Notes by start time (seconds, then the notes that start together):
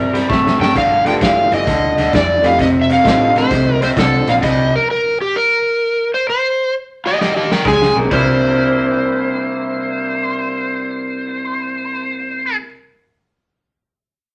Already playing: G2 C3 G3 A#4
0.13 C3 G3, snare, closed hi-hat
0.29 G2 C3 A3, kick, snare
0.47 snare
0.59 G2 C3 A3 G5, snare
0.75 G1 G2 D3 F5, kick, snare, closed hi-hat, crash
1.05 G2 D3 A3 B3 D4 F4 G4 G5, snare, closed hi-hat
1.21 G1 G2 E3 F5, kick, snare, closed hi-hat
1.51 G1 G2 E3 D#5, snare, closed hi-hat
1.67 D2 G2 D3, kick, snare, closed hi-hat
1.97 D2 G2 D3, snare, closed hi-hat
2.13 F2 G2 E3 D5, kick, snare, closed hi-hat
2.42 F2 G2 E3 A3 C4 D#4 F4 G4 F5, snare, closed hi-hat
2.59 F1 F2 C3 D#5, kick, snare, closed hi-hat
2.82 E5
2.90 F2 C3 F5, snare, closed hi-hat
3.04 A1 F2 D3 A3 C4 D#4 F4 G4, kick, snare, closed hi-hat
3.35 F2 D3 C5, snare, closed hi-hat
3.51 C2 F2 C3, kick, snare, closed hi-hat
3.82 F2 C3 C5, snare, closed hi-hat
3.97 C2 F2 D3 A4, kick, snare, closed hi-hat
4.27 A#1 F2 D3 F5, snare, closed hi-hat
4.42 C2 C3 G3 D#5, kick, snare, closed hi-hat, crash
4.76 A#4
4.91 A#4
5.21 G4
5.36 A#4
6.14 C5
6.30 C5
7.06 G4 D#5
7.21 G4 D#5, snare
7.37 G4 D#5
7.51 A#4 G5, snare
7.65 C#2 C#3 G#3 G#5, kick, snare
7.82 snare
7.96 B1 C3 C#3 A#3
8.05 C4
8.10 C2 C3 G3 A#3 D4 E4 C5, kick, crash
8.18 E4
8.24 A#4